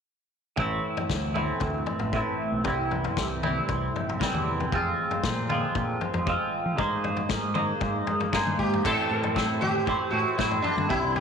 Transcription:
0.56 A1 A2 E3 A3 C4 E4, kick, floor tom
0.97 floor tom
1.10 D2, kick, snare
1.34 A2 E3 A3 C4 E4, floor tom, mid tom
1.60 D2, kick, floor tom
1.86 floor tom
1.99 A1, floor tom
2.13 A2 E3 A3 C4 E4, kick
2.52 B1
2.64 C2 C3 E3 G3 C4 E4, kick, floor tom
2.91 floor tom
3.04 floor tom
3.17 C2, kick, snare
3.43 C3 E3 G3 C4 E4, floor tom, mid tom
3.69 C2, kick, floor tom
3.96 floor tom
4.09 floor tom
4.20 C3 E3 G3 C4 E4, kick, snare
4.34 E2, mid tom
4.60 floor tom
4.72 F2 F3 G#3 C4 F4, kick, floor tom
5.11 floor tom
5.23 A#2, kick, snare
5.49 F3 G#3 C4 F4, floor tom, mid tom
5.75 A#2, kick, floor tom
6.01 floor tom
6.14 F2, floor tom
6.27 F3 G#3 C4 F4, kick
6.66 F3
6.77 G#2 G#3 A#3 D#4 G#4 C5, kick, floor tom
7.04 floor tom
7.17 floor tom
7.29 G#2, kick, snare
7.54 G#3 A#3 D#4 G#4 C5, floor tom, mid tom
7.81 G#2, kick, floor tom
8.07 floor tom
8.20 floor tom
8.33 G2 G#3 A#3 D#4 G#4 C5, kick, snare
8.47 mid tom
8.59 G#2 G4, kick
8.73 floor tom
8.83 A2 E3 A3 C4 E4 A4 C5, kick, floor tom, crash
9.11 A2
9.23 floor tom
9.35 A3 C4 E4 C5, kick, snare
9.61 G4, floor tom, mid tom
9.86 A2 E3 A3 C4 E4 C5, kick, floor tom
10.11 A2 A3 C4 E4 F#4 C5
10.38 A2 A3 C4 E4 C5, kick, snare
10.51 floor tom
10.62 C4 D4 E4 C5, floor tom
10.67 A3
10.77 G2, mid tom
10.88 C2 C3 E3 G3 C4 E4 C5, kick, floor tom
11.04 C2
11.16 G4, floor tom

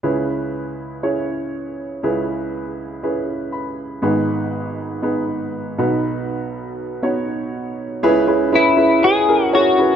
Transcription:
0.03 C#2 C#3 C#4 E4 G#4 B4
1.03 C#4 E4 G#4 C#5
2.03 C#2 C#3 C#4 E4 G#4 B4
3.03 C#4 E4 G#4 B4
3.52 B5
4.02 G#1 G#2 B3 D#4 G#4 B4
5.02 B3 D#4 G#4 B4
5.78 B1 B2 B3 D#4 F#4 B4
7.03 B3 D#4 F#4 C#5
8.03 C#2 C#3 C#4 E4 G#4 B4
8.27 C#4 E4 G#4 B4
8.52 C#4 E4 G#4 B4
8.76 C#4 E4 G#4 B4
9.02 C#4 E4 G#4 B4
9.28 C#4 E4 G#4 A#4
9.53 C#4 E4 F#4 G#4 C#5
9.77 C#4 E4 G#4 B4

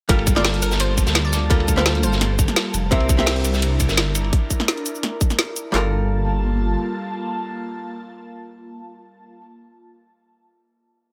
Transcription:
0.09 G1 G3 A#3 F4 A4 A#4 A5, kick, closed hi-hat, ride
0.19 ride
0.27 kick, closed hi-hat, ride, cabasa
0.35 G3 F4 A4 A#4 D5, snare
0.44 snare, closed hi-hat, open hi-hat
0.54 closed hi-hat
0.62 G1 A#4, closed hi-hat, ride, cabasa
0.71 snare, cabasa
0.80 C5, closed hi-hat, ride
0.97 kick, closed hi-hat, ride, cabasa
1.07 D2, snare, closed hi-hat, cabasa
1.15 snare, closed hi-hat, ride
1.25 D5
1.33 snare, closed hi-hat, ride, cabasa
1.50 G3 F4 A4 A#4, kick, closed hi-hat, ride
1.60 ride
1.68 kick, closed hi-hat, ride, cabasa
1.76 G3 F4 A4 A#4 C5, snare
1.86 snare, closed hi-hat, ride
1.95 closed hi-hat
2.03 G1 C5, closed hi-hat, ride, cabasa
2.13 snare, cabasa
2.21 snare, closed hi-hat, ride
2.39 kick, closed hi-hat, ride, cabasa
2.48 snare, closed hi-hat, cabasa
2.56 snare, closed hi-hat, ride
2.74 F1, closed hi-hat, ride, cabasa
2.91 C2 C4 D4 E4 G4 A#4 E5, kick, closed hi-hat, ride
3.00 ride
3.09 kick, closed hi-hat, ride, cabasa
3.17 C4 G4 A#4 E5, snare
3.26 snare, closed hi-hat, open hi-hat
3.36 closed hi-hat
3.44 C2, closed hi-hat, ride, cabasa
3.53 snare, cabasa
3.62 closed hi-hat, ride
3.80 kick, closed hi-hat, ride, cabasa
3.89 G1, snare, closed hi-hat, cabasa
3.97 snare, closed hi-hat, ride
4.15 closed hi-hat, ride, cabasa
4.24 ride
4.33 kick, closed hi-hat
4.50 kick, closed hi-hat, cabasa
4.60 snare
4.68 snare, closed hi-hat
4.77 closed hi-hat
4.86 closed hi-hat, cabasa
4.95 cabasa
5.03 snare, closed hi-hat
5.21 kick, closed hi-hat, cabasa
5.30 snare, closed hi-hat, cabasa
5.39 snare, closed hi-hat
5.56 closed hi-hat, cabasa
5.72 G1 G3 A#3 F4 A4 A5, snare, clap
5.76 A#4

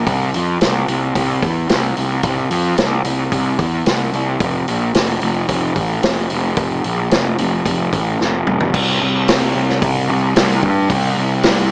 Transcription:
0.07 C2, kick, open hi-hat
0.34 F2, open hi-hat
0.61 C2, snare, open hi-hat
0.88 C2, open hi-hat
1.15 C2, kick, open hi-hat
1.42 E2, kick, open hi-hat
1.69 C2, snare, open hi-hat
1.97 C2, open hi-hat
2.23 C2, kick, open hi-hat
2.51 F2, open hi-hat
2.78 C2, snare, open hi-hat
3.04 C2, open hi-hat
3.32 C2, kick, open hi-hat
3.59 E2, kick, open hi-hat
3.86 C2, snare, open hi-hat
4.13 C2, open hi-hat
4.40 F1, kick, open hi-hat
4.68 A#1, open hi-hat
4.95 F1, snare, open hi-hat
5.21 F1, open hi-hat
5.49 F1, kick, open hi-hat
5.76 A1, kick, open hi-hat
6.03 F1, snare, open hi-hat
6.30 F1, open hi-hat
6.57 F1, kick, open hi-hat
6.84 A#1, open hi-hat
7.11 F1, snare, open hi-hat
7.38 F1, open hi-hat
7.66 F1, kick, open hi-hat
7.93 A1, kick, open hi-hat
8.21 F1, snare
8.47 F1, mid tom
8.60 floor tom
8.74 C2, kick, crash
9.01 C2
9.28 C2, snare, open hi-hat
9.55 C2
9.69 snare
9.82 C2, kick, open hi-hat
10.09 C2
10.36 C2, snare, open hi-hat
10.63 G2, kick
10.90 C2, kick, open hi-hat
11.18 C2
11.43 C2, snare, open hi-hat

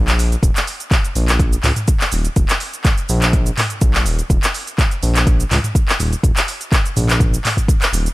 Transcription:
Already playing: A#1
0.08 clap, closed hi-hat, shaker
0.19 open hi-hat, shaker
0.32 closed hi-hat, shaker
0.43 D#1, kick, closed hi-hat, shaker
0.56 clap, closed hi-hat, shaker
0.67 open hi-hat, shaker
0.80 closed hi-hat, shaker
0.91 kick, clap, closed hi-hat, shaker
1.04 closed hi-hat, shaker
1.15 A#1, open hi-hat, shaker
1.28 clap, closed hi-hat, shaker
1.40 kick, closed hi-hat, shaker
1.53 closed hi-hat, shaker
1.63 C#2, clap, mid tom, open hi-hat, shaker
1.76 closed hi-hat, mid tom, shaker
1.88 kick, closed hi-hat, shaker
2.00 clap, shaker
2.12 D#1, open hi-hat, shaker
2.25 closed hi-hat, shaker
2.36 D#1, kick, closed hi-hat, shaker
2.49 clap, closed hi-hat, shaker
2.60 open hi-hat, shaker
2.73 closed hi-hat, shaker
2.85 kick, clap, closed hi-hat, shaker
2.98 closed hi-hat, shaker
3.09 A#1, open hi-hat, shaker
3.22 clap, closed hi-hat, shaker
3.33 kick, closed hi-hat, shaker
3.46 closed hi-hat, shaker
3.58 clap, mid tom, open hi-hat, shaker
3.70 closed hi-hat, shaker
3.81 A#1, kick, closed hi-hat, shaker
3.94 clap, shaker
4.06 D#1, open hi-hat, shaker
4.19 closed hi-hat, shaker
4.30 D#1, kick, closed hi-hat, shaker
4.43 clap, closed hi-hat, shaker
4.54 open hi-hat, shaker
4.67 closed hi-hat, shaker
4.78 kick, clap, closed hi-hat, shaker
4.91 closed hi-hat, shaker
5.03 A#1, open hi-hat, shaker
5.16 clap, closed hi-hat, shaker
5.27 kick, closed hi-hat, shaker
5.40 closed hi-hat, shaker
5.51 C#2, clap, mid tom, open hi-hat, shaker
5.64 closed hi-hat, mid tom, shaker
5.75 kick, closed hi-hat, shaker
5.89 clap, shaker
5.99 D#1, open hi-hat, shaker
6.13 closed hi-hat, shaker
6.23 D#1, kick, closed hi-hat, shaker
6.37 clap, open hi-hat, shaker
6.48 open hi-hat, shaker
6.61 closed hi-hat, shaker
6.72 kick, clap, closed hi-hat, shaker
6.86 closed hi-hat, shaker
6.96 A#1, mid tom, open hi-hat, shaker
7.09 clap, closed hi-hat, shaker
7.20 kick, closed hi-hat, mid tom, shaker
7.34 closed hi-hat, shaker
7.45 clap, mid tom, open hi-hat, shaker
7.57 kick, closed hi-hat, shaker
7.68 kick, closed hi-hat, shaker
7.82 clap, closed hi-hat, shaker
7.93 D#1, open hi-hat, shaker
8.06 closed hi-hat, shaker

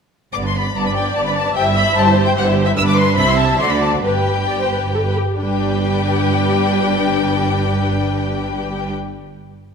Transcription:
0.33 G1 G2 B3 D5 D6
0.44 D4 B4 C6
0.55 B3 D5 B5
0.66 D4 B4
0.75 G1 G2 B3 D5 A5
0.85 D4 B4 B5
0.94 B3 D5 G5
1.03 D4 B4
1.15 G1 G2 B3 D5 A5
1.24 D4 B4 B5
1.35 B3 D5 A5
1.45 D4 B4
1.55 G1 G2 G4 C5 E5 G5
1.64 E4 E5
1.74 G4 C5 B5
1.85 E4 E5
1.96 G1 G2 G4 C5 A5
2.05 E4 E5
2.15 G4 C5
2.25 E4 E5 G5
2.35 G1 G2 G4 C5 F#5
2.45 E4 E5
2.55 G4 C5
2.65 E4 E5
2.76 G1 G2 D4 B4 E6
2.88 D6
2.97 C6
3.16 C2 C3 E4 C5 E5 B5
3.30 C6
3.40 A5
3.59 D2 D3 F#4 C5 D5 C6
3.71 B5
3.82 A5
4.03 G1 G2 G4 B4 G5
4.48 D5
4.61 C5
4.72 B4
4.94 A4
5.07 B4
5.17 G4
5.40 G1 G2 G3 D4 G4 B4 G5

